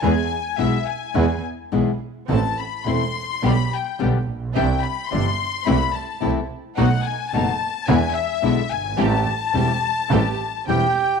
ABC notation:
X:1
M:4/4
L:1/8
Q:1/4=107
K:Am
V:1 name="Violin section"
^g2 e g2 z3 | a b c'2 b g z2 | g b c'2 b a z2 | ^f ^g a2 g e2 g |
a6 g2 |]
V:2 name="Bandoneon"
z8 | z8 | z8 | z8 |
z6 [Gg]2 |]
V:3 name="String section"
[B,E^G] z [B,EG] z [B,EG] z [B,EG] z | [CEA] z [CEA] z [B,DG] z [B,DG] z | [CDE] z [CDE] z [A,CE] z [A,CE] z | [A,B,^D] z [A,B,D] z [^G,=DE] z [G,DE] z |
[A,CG] z [A,CG] z [A,CG] z [A,CG] z |]
V:4 name="Nylon-string guitar" clef=bass
[B,,E,^G,B,E] z [B,,E,G,B,E] z [B,,E,G,B,E] z [B,,E,G,B,E] z | [E,A,CE] z [E,A,CE] z [B,,D,G,B,G] z [B,,D,G,B,G] z | [C,E,G,DE] z [C,E,G,DE] z [C,E,A,CE] z [C,E,A,CE] z | [B,,^D,A,B,^F] z [B,,D,A,B,F] z [B,,=D,^G,B,E] z [B,,D,G,B,E] z |
[E,G,CE] z [E,G,CE] z [E,G,CE] z [E,G,CE] z |]
V:5 name="Double bass" clef=bass
E,, z B,,, z E,, z B,,, z | A,,, z E,,, z B,,, z B,,, _B,,, | C,, z G,,, z C,, z C,, z | B,,, z ^F,,, z E,, z B,,, G,,, |
A,,, z E,,, z A,,, z E,,, z |]